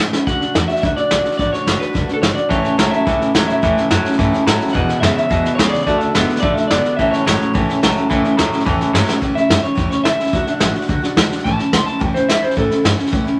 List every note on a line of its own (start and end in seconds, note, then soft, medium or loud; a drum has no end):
0.00 0.12 A2 medium
0.00 0.13 E3 medium
0.00 0.13 A3 medium
0.00 0.13 C#4 medium
0.00 0.11 E4 medium
0.13 0.26 A3 soft
0.13 0.27 C#4 medium
0.13 0.27 E4 medium
0.13 muted upright bass stroke soft
0.13 snare medium
0.26 0.40 F#2 medium
0.26 0.41 D3 medium
0.26 0.41 A3 medium
0.26 0.39 D4 medium
0.26 0.37 F#4 loud
0.26 0.67 F#5 loud
0.26 kick loud
0.26 snare soft
0.39 0.53 A3 soft
0.39 0.54 D4 medium
0.39 0.54 F#4 medium
0.39 muted upright bass stroke soft
0.39 snare soft
0.53 0.68 E2 loud
0.53 0.68 D3 medium
0.53 0.69 A3 medium
0.53 0.68 D4 medium
0.53 0.66 F#4 medium
0.53 snare loud
0.53 hi-hat pedal medium
0.67 0.82 A3 soft
0.67 0.82 D4 soft
0.67 0.82 F#4 medium
0.67 0.80 E5 medium
0.67 snare soft
0.76 snare soft
0.82 0.96 D2 medium
0.82 0.96 D3 medium
0.82 0.97 A3 medium
0.82 0.97 D4 medium
0.82 0.95 F#4 medium
0.82 0.87 E5 loud
0.82 kick loud
0.82 snare soft
0.96 1.10 A3 soft
0.96 1.10 D4 medium
0.96 1.10 F#4 medium
0.96 1.36 D5 medium
0.96 muted upright bass stroke medium
0.96 snare soft
1.10 1.24 B1 loud
1.10 1.24 D3 medium
1.10 1.25 A3 medium
1.10 1.23 D4 medium
1.10 1.22 F#4 medium
1.10 snare loud
1.10 hi-hat pedal medium
1.23 1.38 A3 soft
1.23 1.38 D4 soft
1.23 1.38 F#4 medium
1.23 muted upright bass stroke medium
1.23 snare soft
1.32 snare soft
1.38 1.52 A1 medium
1.38 1.52 D3 medium
1.38 1.53 A3 medium
1.38 1.52 D4 medium
1.38 1.51 F#4 medium
1.38 1.52 D5 medium
1.38 kick loud
1.38 snare soft
1.52 1.65 A3 medium
1.52 1.66 D4 medium
1.52 1.66 F#4 medium
1.52 1.81 C#5 loud
1.52 snare soft
1.65 1.79 G1 medium
1.65 1.80 D3 medium
1.65 1.80 A3 medium
1.65 1.80 D4 medium
1.65 1.77 F#4 medium
1.65 snare loud
1.65 hi-hat pedal medium
1.79 1.92 A3 soft
1.79 1.93 D4 soft
1.79 1.94 F#4 medium
1.79 2.13 B4 medium
1.79 snare soft
1.93 2.08 F#1 medium
1.93 2.08 D3 medium
1.93 2.08 A3 medium
1.93 2.08 D4 medium
1.93 2.06 F#4 medium
1.93 kick loud
1.93 snare soft
2.08 2.22 A3 soft
2.08 2.23 D4 soft
2.08 2.22 F#4 medium
2.08 muted upright bass stroke medium
2.08 snare soft
2.14 2.18 A4 medium
2.22 2.35 G1 medium
2.22 2.36 D3 medium
2.22 2.37 A3 medium
2.22 2.35 D4 medium
2.22 2.34 F#4 medium
2.22 2.27 C#5 loud
2.22 snare loud
2.22 hi-hat pedal medium
2.35 2.50 A3 soft
2.35 2.51 D4 medium
2.35 2.50 F#4 medium
2.35 2.50 D5 medium
2.35 muted upright bass stroke medium
2.35 snare soft
2.50 2.63 A1 medium
2.50 2.64 A2 medium
2.50 2.64 E3 medium
2.50 2.65 A3 medium
2.50 2.64 C#4 medium
2.50 2.62 E4 loud
2.50 2.91 C#5 medium
2.50 kick loud
2.50 snare soft
2.63 2.77 A3 soft
2.63 2.78 C#4 medium
2.63 2.78 E4 medium
2.63 muted upright bass stroke medium
2.63 snare soft
2.77 2.91 B1 loud
2.77 3.03 A2 medium
2.77 2.92 E3 medium
2.77 3.04 F#3 loud
2.77 2.92 A3 medium
2.77 2.93 C#4 medium
2.77 2.91 E4 medium
2.77 snare loud
2.77 hi-hat pedal medium
2.91 3.06 A3 soft
2.91 3.06 C#4 soft
2.91 3.06 E4 medium
2.91 3.31 E5 medium
2.91 muted upright bass stroke medium
2.91 snare soft
3.06 3.19 C#2 medium
3.06 3.20 A2 medium
3.06 3.21 E3 medium
3.06 3.21 A3 medium
3.06 3.19 C#4 medium
3.06 3.18 E4 medium
3.06 kick loud
3.06 snare soft
3.19 3.33 A3 soft
3.19 3.34 C#4 medium
3.19 3.34 E4 medium
3.19 muted upright bass stroke medium
3.19 snare soft
3.34 3.48 D2 medium
3.34 3.60 A2 medium
3.34 3.48 E3 medium
3.34 3.60 F#3 loud
3.34 3.48 A3 medium
3.34 3.48 C#4 medium
3.34 3.47 E4 medium
3.34 snare loud
3.34 hi-hat pedal medium
3.48 3.62 A3 soft
3.48 3.62 C#4 medium
3.48 3.62 E4 medium
3.48 3.87 E5 medium
3.48 snare soft
3.62 3.75 E2 medium
3.62 3.76 A2 loud
3.62 3.76 E3 medium
3.62 3.77 A3 medium
3.62 3.76 C#4 medium
3.62 3.74 E4 loud
3.62 kick loud
3.62 snare soft
3.76 3.90 A3 soft
3.76 3.91 C#4 medium
3.76 3.90 E4 medium
3.76 muted upright bass stroke medium
3.76 snare soft
3.90 4.04 F#2 medium
3.90 4.16 A2 medium
3.90 4.04 E3 medium
3.90 4.16 F#3 loud
3.90 4.05 A3 medium
3.90 4.05 C#4 medium
3.90 4.04 E4 medium
3.90 snare loud
3.90 hi-hat pedal medium
4.04 4.19 A3 medium
4.04 4.19 C#4 medium
4.04 4.19 E4 medium
4.04 muted upright bass stroke medium
4.04 snare soft
4.13 snare soft
4.19 4.32 G2 medium
4.19 4.33 A2 loud
4.19 4.33 E3 loud
4.19 4.33 A3 medium
4.19 4.32 C#4 medium
4.19 4.31 E4 loud
4.19 kick loud
4.19 snare soft
4.32 4.47 A3 medium
4.32 4.47 C#4 medium
4.32 4.46 E4 medium
4.32 muted upright bass stroke medium
4.32 snare soft
4.46 4.59 A2 medium
4.46 4.72 A2 medium
4.46 4.61 E3 medium
4.46 4.72 F#3 loud
4.46 4.60 C#4 medium
4.46 4.59 E4 medium
4.46 snare loud
4.46 hi-hat pedal medium
4.60 4.74 A3 soft
4.60 4.74 C#4 medium
4.60 4.74 E4 medium
4.60 muted upright bass stroke medium
4.60 snare soft
4.68 snare soft
4.73 4.88 E2 medium
4.73 4.87 E2 medium
4.73 4.88 B2 medium
4.73 4.88 E3 medium
4.73 4.88 G#3 medium
4.73 4.87 B3 loud
4.73 4.86 E4 medium
4.73 5.00 F#5 loud
4.73 kick loud
4.73 snare soft
4.87 5.00 E3 soft
4.87 5.01 G#3 soft
4.87 5.02 B3 medium
4.87 5.02 E4 medium
4.87 muted upright bass stroke medium
4.87 snare soft
5.00 5.27 E2 medium
5.00 5.15 F#2 loud
5.00 5.27 C#3 loud
5.00 5.15 E3 medium
5.00 5.15 G#3 medium
5.00 5.15 B3 medium
5.00 5.13 E4 medium
5.00 5.13 E5 loud
5.00 snare loud
5.00 hi-hat pedal medium
5.14 5.29 E3 soft
5.14 5.29 G#3 soft
5.14 5.29 B3 medium
5.14 5.29 E4 soft
5.14 5.55 E5 loud
5.14 muted upright bass stroke medium
5.14 snare soft
5.29 5.43 E2 medium
5.29 5.44 B2 medium
5.29 5.44 E3 medium
5.29 5.44 G#3 medium
5.29 5.43 B3 medium
5.29 5.42 E4 loud
5.29 kick loud
5.29 snare soft
5.44 5.56 E3 soft
5.44 5.57 G#3 soft
5.44 5.58 B3 medium
5.44 5.58 E4 medium
5.44 snare soft
5.55 5.72 C#2 medium
5.55 5.83 E2 medium
5.55 5.84 C#3 loud
5.55 5.72 E3 medium
5.55 5.72 G#3 medium
5.55 5.71 B3 medium
5.55 5.69 C#5 medium
5.55 snare loud
5.55 hi-hat pedal medium
5.69 5.86 B3 medium
5.69 5.86 E4 medium
5.69 5.81 D5 medium
5.69 muted upright bass stroke medium
5.73 5.86 E3 soft
5.73 5.86 G#3 soft
5.73 snare soft
5.80 5.98 D5 medium
5.80 snare soft
5.86 5.99 D2 medium
5.86 6.00 D3 medium
5.86 6.00 A3 medium
5.86 6.01 D4 medium
5.86 6.00 F#4 loud
5.86 kick loud
5.86 snare soft
5.98 6.15 F#4 medium
5.98 6.40 E5 medium
5.98 muted upright bass stroke medium
5.98 snare soft
6.03 6.13 A3 soft
6.03 6.14 D4 medium
6.14 6.28 F#1 loud
6.14 6.28 D3 medium
6.14 6.28 A3 medium
6.14 6.40 B3 loud
6.14 6.29 D4 medium
6.14 6.27 F#4 medium
6.14 snare loud
6.14 hi-hat pedal medium
6.28 6.41 A3 soft
6.28 6.42 D4 soft
6.28 6.42 F#4 medium
6.28 snare soft
6.36 snare soft
6.40 6.56 A1 medium
6.40 6.56 D3 medium
6.40 6.56 A3 medium
6.40 6.56 D4 medium
6.40 6.55 F#4 medium
6.40 6.54 D5 loud
6.40 kick loud
6.40 snare soft
6.54 6.71 D4 medium
6.54 6.70 F#4 medium
6.54 6.67 E5 medium
6.54 muted upright bass stroke medium
6.54 snare soft
6.59 6.70 A3 soft
6.68 6.83 F#1 medium
6.68 6.84 D3 medium
6.68 6.85 A3 medium
6.68 6.96 B3 medium
6.68 6.96 D5 loud
6.68 snare loud
6.68 hi-hat pedal loud
6.72 6.84 D4 medium
6.72 6.83 F#4 medium
6.84 6.98 A3 soft
6.84 6.99 D4 medium
6.84 6.98 F#4 medium
6.84 muted upright bass stroke medium
6.84 snare soft
6.97 7.11 A1 medium
6.97 7.12 A2 medium
6.97 7.12 E3 medium
6.97 7.13 A3 loud
6.97 7.11 C#4 loud
6.97 7.10 E4 medium
6.97 7.11 E5 loud
6.97 kick loud
6.97 snare soft
7.11 7.25 A3 soft
7.11 7.26 C#4 medium
7.11 7.26 E4 medium
7.11 7.24 C#5 medium
7.11 snare soft
7.25 7.39 G1 medium
7.25 7.51 A2 medium
7.25 7.39 E3 medium
7.25 7.52 F#3 medium
7.25 7.40 A3 medium
7.25 7.39 C#4 medium
7.25 7.38 E4 medium
7.25 8.06 C#5 medium
7.25 snare loud
7.25 hi-hat pedal medium
7.39 7.54 A3 soft
7.39 7.54 C#4 medium
7.39 7.53 E4 medium
7.39 muted upright bass stroke medium
7.39 snare soft
7.53 7.68 A1 medium
7.53 7.68 A2 medium
7.53 7.68 E3 medium
7.53 7.68 A3 medium
7.53 7.68 C#4 loud
7.53 7.67 E4 loud
7.53 kick loud
7.53 snare soft
7.68 7.82 A3 medium
7.68 7.82 C#4 medium
7.68 7.82 E4 medium
7.68 muted upright bass stroke medium
7.68 snare soft
7.82 7.96 B1 medium
7.82 8.07 A2 medium
7.82 7.96 E3 medium
7.82 8.08 F#3 medium
7.82 7.96 A3 medium
7.82 7.96 C#4 medium
7.82 7.95 E4 medium
7.82 snare loud
7.82 hi-hat pedal medium
7.96 8.09 A3 soft
7.96 8.09 C#4 medium
7.96 8.10 E4 medium
7.96 muted upright bass stroke medium
7.96 snare soft
8.09 8.24 C#2 medium
8.09 8.23 A2 loud
8.09 8.24 E3 loud
8.09 8.24 A3 loud
8.09 8.24 C#4 loud
8.09 8.22 E4 loud
8.09 kick loud
8.09 snare soft
8.23 8.37 A3 medium
8.23 8.38 C#4 medium
8.23 8.37 E4 medium
8.23 snare soft
8.37 8.52 D2 medium
8.37 8.63 A2 medium
8.37 8.52 E3 medium
8.37 8.63 F#3 medium
8.37 8.52 A3 medium
8.37 8.53 C#4 medium
8.37 8.51 E4 medium
8.37 snare loud
8.37 hi-hat pedal loud
8.52 8.65 A3 medium
8.52 8.65 C#4 medium
8.52 8.66 E4 medium
8.52 muted upright bass stroke medium
8.52 snare soft
8.60 snare soft
8.65 8.80 E2 medium
8.65 8.79 A2 medium
8.65 8.80 E3 loud
8.65 8.80 A3 loud
8.65 8.80 C#4 medium
8.65 8.78 E4 loud
8.65 kick loud
8.65 snare soft
8.80 8.95 A3 medium
8.80 8.95 C#4 medium
8.80 8.94 E4 medium
8.80 muted upright bass stroke medium
8.80 snare soft
8.93 9.07 G2 medium
8.93 9.19 A2 medium
8.93 9.08 E3 medium
8.93 9.19 F#3 loud
8.93 9.09 A3 medium
8.93 9.07 C#4 medium
8.93 snare loud
8.93 hi-hat pedal medium
8.98 9.06 E4 medium
9.07 9.20 A3 medium
9.07 9.21 C#4 medium
9.07 9.21 E4 medium
9.07 snare medium
9.21 9.35 A2 medium
9.21 9.35 E3 loud
9.21 9.35 A3 medium
9.21 9.35 C#4 medium
9.21 9.33 E4 loud
9.21 kick loud
9.21 snare soft
9.34 9.48 A3 soft
9.34 9.49 C#4 medium
9.34 9.49 E4 medium
9.34 9.62 E5 loud
9.34 muted upright bass stroke soft
9.34 snare soft
9.49 9.63 F#2 medium
9.49 9.63 E3 medium
9.49 9.63 A3 medium
9.49 9.62 C#4 medium
9.49 snare loud
9.49 hi-hat pedal medium
9.61 9.75 A3 soft
9.61 9.75 C#4 medium
9.61 9.76 E4 medium
9.61 9.90 C#5 medium
9.61 snare soft
9.75 9.90 E2 medium
9.75 9.90 A2 medium
9.75 9.90 E3 medium
9.75 9.90 A3 medium
9.75 9.90 C#4 medium
9.75 9.88 E4 loud
9.75 kick loud
9.75 snare soft
9.89 10.04 A3 soft
9.89 10.05 C#4 medium
9.89 10.04 E4 medium
9.89 10.03 C#5 medium
9.89 muted upright bass stroke medium
9.89 snare soft
10.04 10.18 C#2 medium
10.04 10.19 E3 medium
10.04 10.19 A3 medium
10.04 10.19 C#4 medium
10.04 10.86 E5 loud
10.04 snare loud
10.04 hi-hat pedal medium
10.19 10.32 A3 soft
10.19 10.33 C#4 medium
10.19 10.33 E4 medium
10.19 muted upright bass stroke soft
10.19 snare soft
10.27 snare soft
10.32 10.46 D2 medium
10.32 10.47 D3 medium
10.32 10.47 A3 medium
10.32 10.47 D4 loud
10.32 10.45 F#4 loud
10.32 kick loud
10.32 snare soft
10.46 10.60 A3 medium
10.46 10.60 D4 medium
10.46 10.61 F#4 medium
10.46 muted upright bass stroke medium
10.46 snare soft
10.59 10.74 A1 loud
10.59 10.74 D3 medium
10.59 10.75 A3 medium
10.59 10.74 D4 medium
10.59 10.72 F#4 medium
10.59 snare loud
10.59 hi-hat pedal medium
10.74 10.87 A3 medium
10.74 10.88 D4 medium
10.74 10.88 F#4 medium
10.74 muted upright bass stroke medium
10.74 snare soft
10.82 snare soft
10.88 11.01 C#2 medium
10.88 11.02 D3 medium
10.88 11.03 A3 loud
10.88 11.02 D4 loud
10.88 11.01 F#4 loud
10.88 kick loud
10.88 snare soft
11.02 11.16 A3 soft
11.02 11.17 D4 medium
11.02 11.16 F#4 medium
11.02 muted upright bass stroke medium
11.02 snare soft
11.16 11.30 D2 loud
11.16 11.30 D3 medium
11.16 11.31 A3 medium
11.16 11.30 D4 medium
11.16 11.28 F#4 medium
11.16 snare loud
11.16 hi-hat pedal medium
11.29 11.45 A3 medium
11.29 11.45 D4 medium
11.29 11.44 F#4 medium
11.29 muted upright bass stroke medium
11.29 snare soft
11.39 snare soft
11.44 11.58 A1 medium
11.44 11.59 A2 medium
11.44 11.59 E3 medium
11.44 11.59 A3 medium
11.44 11.59 C#4 medium
11.44 11.57 E4 medium
11.44 11.72 A5 loud
11.44 kick loud
11.44 snare soft
11.58 11.72 A3 soft
11.58 11.73 C#4 medium
11.58 11.72 E4 medium
11.58 muted upright bass stroke medium
11.58 snare soft
11.72 11.86 C#2 loud
11.72 11.87 E3 medium
11.72 11.87 A3 medium
11.72 11.87 C#4 medium
11.72 11.85 E4 medium
11.72 11.86 C6 loud
11.72 snare loud
11.72 hi-hat pedal medium
11.86 11.99 A3 soft
11.86 12.00 C#4 medium
11.86 12.00 E4 medium
11.86 12.00 A5 medium
11.86 muted upright bass stroke medium
11.86 snare soft
11.99 12.14 D#2 medium
11.99 12.14 A2 medium
11.99 12.14 E3 medium
11.99 12.15 A3 medium
11.99 12.14 C#4 medium
11.99 12.12 E4 medium
11.99 12.14 G5 loud
11.99 kick loud
11.99 snare soft
12.13 12.28 A3 soft
12.13 12.28 C#4 medium
12.13 12.28 E4 medium
12.13 12.28 C5 medium
12.13 muted upright bass stroke medium
12.13 snare soft
12.28 12.42 E2 medium
12.28 12.42 E3 medium
12.28 12.43 A3 medium
12.28 12.42 C#4 medium
12.28 12.40 E4 medium
12.28 12.42 E5 loud
12.28 snare loud
12.28 hi-hat pedal medium
12.41 12.55 A3 soft
12.41 12.55 C#4 soft
12.41 12.56 E4 medium
12.41 12.56 C5 medium
12.41 muted upright bass stroke soft
12.41 snare soft
12.51 snare soft
12.55 12.70 A2 medium
12.55 12.70 E3 medium
12.55 12.70 A3 medium
12.55 12.69 C#4 loud
12.55 12.68 E4 medium
12.55 12.84 A4 loud
12.55 kick loud
12.55 snare soft
12.69 12.82 A3 soft
12.69 12.83 C#4 medium
12.69 12.84 E4 medium
12.69 snare soft
12.83 12.98 G2 loud
12.83 12.98 E3 medium
12.83 12.98 A3 medium
12.83 12.96 C#4 medium
12.83 12.95 E4 medium
12.83 snare loud
12.83 hi-hat pedal medium
12.96 13.11 A3 soft
12.96 13.11 C#4 medium
12.96 13.11 E4 medium
12.96 snare soft
13.06 snare soft
13.11 13.25 F#2 medium
13.11 13.26 A2 loud
13.11 13.26 E3 loud
13.11 13.25 A3 loud
13.11 13.24 C#4 loud
13.11 13.23 E4 loud
13.11 kick loud
13.11 snare soft
13.24 13.38 A3 medium
13.24 13.39 C#4 medium
13.24 13.39 E4 medium
13.24 muted upright bass stroke soft
13.24 snare soft